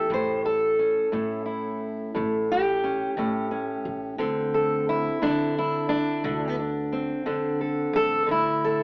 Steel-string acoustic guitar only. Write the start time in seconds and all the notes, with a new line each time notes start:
Already playing: G4 A4
0.11 A2 C5
0.45 A4
0.79 C#4
1.12 A2 E4
1.46 E4
2.15 A2
2.52 G4
2.84 C#4
3.18 A2 C#4
3.51 C#4
4.18 D3 C4
4.54 A4
4.89 E4
5.22 D3 D4
5.59 E4
5.89 D4
6.25 D3
6.59 D4
6.92 C4
7.26 D3 D4
7.61 A4
7.96 A4
8.27 D3
8.31 E4
8.64 A4